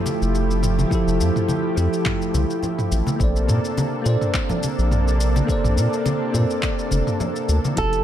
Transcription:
Already playing: tine electric piano F3 E4 G4 A4, analog synth pad F3 A3 E4 G4
0.06 high conga, shaker
0.22 analog synth bass F1, shaker
0.35 shaker
0.51 shaker
0.63 mid tom, shaker
0.79 high conga, shaker
0.87 tine electric piano F3 E4, kick
0.92 tine electric piano G4 A4, shaker
1.07 analog synth bass F1, shaker
1.20 analog synth bass F2, shaker
1.36 mid tom, shaker
1.48 high conga, shaker
1.75 analog synth bass F2, tine electric piano F3 E4 G4 A4, shaker
1.93 shaker
2.06 kick, clap, mid tom, shaker
2.22 shaker
2.34 analog synth bass C2, high conga, shaker
2.50 shaker
2.63 low conga, shaker
2.79 mid tom, shaker
2.91 analog synth bass A1, shaker
3.07 high conga, shaker
3.16 analog synth bass A#1, analog synth pad C3 A#3 D4 A4, tine electric piano A#3 A4, kick
3.20 tine electric piano C5 D5, shaker
3.36 shaker
3.48 analog synth bass A#2, mid tom, shaker
3.65 shaker
3.77 high conga, shaker
4.02 analog synth bass A#2, tine electric piano A#3 A4
4.06 tine electric piano C5 D5, shaker
4.21 mid tom, shaker
4.34 kick, clap, shaker
4.50 low conga, shaker
4.63 high conga, shaker
4.78 analog synth bass A#1, shaker
4.91 mid tom, shaker
5.08 shaker
5.21 shaker
5.36 high conga, shaker
5.45 tine electric piano A#3 A4, kick
5.49 tine electric piano C5 D5, shaker
5.64 analog synth bass A#1, mid tom, shaker
5.77 analog synth bass A#2, shaker
5.93 shaker
6.06 high conga, shaker
6.32 analog synth bass A#2, tine electric piano A#3 A4 C5 D5, mid tom, shaker
6.50 shaker
6.63 kick, clap, shaker
6.79 shaker
6.91 analog synth bass F1, high conga, shaker
7.07 mid tom, shaker
7.20 low conga, shaker
7.36 shaker
7.49 analog synth bass D2, shaker
7.65 high conga, shaker
7.74 analog synth bass F1, tine electric piano F3 E4, analog synth pad F3 A3 E4 G4, kick, closed hi-hat
7.78 tine electric piano G4 A4, nylon-string guitar A4, shaker
7.93 closed hi-hat, shaker

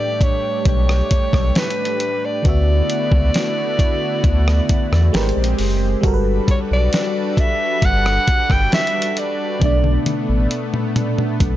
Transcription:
Already playing: fm electric piano A2 G3 D4 B4, analog synth pad A3 D4 G4, alto saxophone D5
0.21 alto saxophone C#5, kick, closed hi-hat
0.65 sub bass B1, alto saxophone C#5, kick, closed hi-hat
0.89 cross-stick
1.11 kick, closed hi-hat
1.33 sub bass B1, kick, cross-stick
1.55 alto saxophone B4, snare, closed hi-hat
1.70 closed hi-hat
1.85 closed hi-hat
2.00 closed hi-hat
2.25 alto saxophone D5
2.42 sub bass D2, fm electric piano D3 B3, analog synth pad D3 A3 B3 E4 F#4, kick, closed hi-hat
2.47 fm electric piano F#4 E5
2.90 closed hi-hat
3.12 sub bass C#2, kick
3.34 snare, closed hi-hat
3.79 kick, closed hi-hat
4.24 sub bass D2, kick, closed hi-hat
4.48 cross-stick
4.69 kick, closed hi-hat
4.92 sub bass E2, cross-stick
5.13 sub bass G#1, fm electric piano G#3 G4 A#4 B4, analog synth pad G#3 C4 G4, snare, closed hi-hat
5.23 fm electric piano C5
5.29 closed hi-hat
5.37 sub bass A#1
5.44 closed hi-hat
5.59 sub bass F#1, open hi-hat
6.01 sub bass G1, fm electric piano G3 F#4, analog synth pad G3 D4 F#4 A4 B4, kick, closed hi-hat
6.05 fm electric piano A4 A#4
6.14 fm electric piano B4
6.48 alto saxophone C#5, kick, closed hi-hat
6.71 sub bass B1, alto saxophone D5
6.93 snare, closed hi-hat
7.37 alto saxophone E5, kick, closed hi-hat
7.82 sub bass G1, alto saxophone F#5, kick, closed hi-hat
8.06 cross-stick
8.28 kick, closed hi-hat
8.50 sub bass G1, alto saxophone G5, kick, cross-stick
8.72 alto saxophone E5, snare, closed hi-hat
8.87 closed hi-hat
9.02 closed hi-hat
9.17 alto saxophone D5, closed hi-hat
9.59 sub bass B1, fm electric piano B2 A3, analog synth pad A3 B3, kick, closed hi-hat, high tom
9.63 fm electric piano D4 D5
9.84 high tom
10.06 closed hi-hat, high tom
10.29 sub bass A1
10.51 closed hi-hat
10.74 mid tom
10.96 closed hi-hat, mid tom
11.18 mid tom
11.40 sub bass B1, kick, closed hi-hat

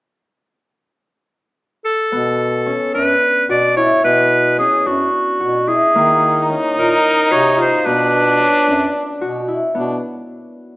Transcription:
1.85 clarinet A4
2.12 bass clarinet B2, harp B3
2.66 harp C#4
2.94 bass clarinet F#2, harp D4, clarinet B4
3.49 bass clarinet B2, harp F#4, clarinet D5
3.76 harp E4, clarinet C#5
4.04 bass clarinet B2, harp B3, clarinet B4
4.58 harp C#4, clarinet G#4
4.86 bass clarinet F#2, harp D4, clarinet F#4
5.40 bass clarinet B2, harp F#4
5.68 harp E4, clarinet G#4
5.94 bass clarinet D#3, harp A#3, french horn D#4
6.49 harp C#4
6.76 bass clarinet A#2, harp D#4, clarinet A#4
7.31 bass clarinet C3, harp F#4, clarinet C#5
7.58 harp F4, clarinet C5
7.85 bass clarinet B2, harp B3, french horn D4, clarinet B4
8.40 harp C#4
8.67 bass clarinet F#2, harp D4
9.21 bass clarinet B2, harp F#4
9.48 harp E4
9.75 bass clarinet B2, harp B3, french horn D4

